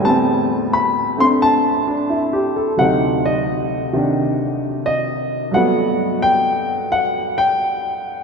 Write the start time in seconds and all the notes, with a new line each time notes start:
Already playing: A2
0.01 G3 B3 A5
0.08 C4
0.73 B5
1.17 A3 C4 D4 C6
1.42 A5
1.87 D4
2.10 E4
2.33 G4
2.56 A4
2.77 D2 C3 F#3 F#5
2.82 D#4
3.26 D#5
3.93 C3 D#3 D4
4.86 D#5
5.51 G2 F#3 A3 F#5
5.56 B3
6.22 G5
6.92 F#5
7.38 G5